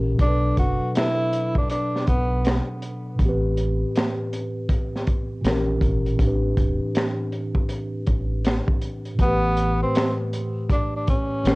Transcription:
Already playing: A#1 A#2 E3 C#4 G4 A#4
0.14 B2 F#3
0.19 B1 D4, kick, closed hi-hat
0.24 A4 B4
0.57 F#1 F#4, kick, closed hi-hat
0.95 E4, finger snap, snare, closed hi-hat
1.33 closed hi-hat
1.55 D4, kick
1.70 D4, closed hi-hat
1.96 snare
2.07 B1 B3, kick, closed hi-hat
2.45 finger snap, snare, closed hi-hat
2.82 closed hi-hat
3.15 A2 E3
3.19 A1 B3, kick, closed hi-hat
3.25 C4 G4 B4
3.57 closed hi-hat
3.95 finger snap, snare, closed hi-hat
4.33 closed hi-hat
4.69 kick, closed hi-hat
4.96 snare
5.07 kick, closed hi-hat
5.41 A#1 A#2 E3 C4, closed hi-hat
5.46 G4 A#4, finger snap, snare
5.51 C#4
5.81 G#1, kick, closed hi-hat
6.06 closed hi-hat
6.13 A2 E3
6.19 A1 C4 D4, kick, closed hi-hat
6.24 G4 B4
6.57 E1, kick, closed hi-hat
6.95 finger snap, snare, closed hi-hat
7.32 closed hi-hat
7.55 kick
7.69 closed hi-hat
8.07 A1, kick, closed hi-hat
8.45 finger snap, snare, closed hi-hat
8.68 kick
8.81 closed hi-hat
9.05 closed hi-hat
9.15 A2 E3
9.19 A1 A3 B3, kick, closed hi-hat
9.25 G4 B4
9.57 closed hi-hat
9.83 C4
9.95 finger snap, snare, closed hi-hat
10.33 closed hi-hat
10.69 D4, kick, closed hi-hat
10.96 D4
11.07 C#4, kick, closed hi-hat
11.43 A#1 A#2 E3 C#4, snare, closed hi-hat
11.48 G4 A#4, finger snap

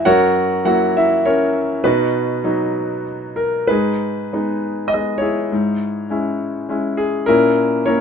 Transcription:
0.05 F#2 F#4 A#4 C#5 F#5
0.65 F#3 A#3 E4 F#4 F#5
0.97 E4 E5
1.25 C#4 A#4 C#5
1.84 B2 B3 D#4 F#4 B4
2.44 F#3 B3 D#4
3.36 A#4
3.67 G#2 D#4 G#4 B4
4.33 G#3 B3 D#4
4.88 D#5
4.94 G#3 B3 D#5
5.18 E4 G#4 C#5
5.52 G#2
6.10 G#3 C#4 E4
6.69 G#3 C#4 E4
6.97 G#4
7.26 A#2 C#4 E4 A#4
7.86 A#3 C#4 E4 A#4 C#5

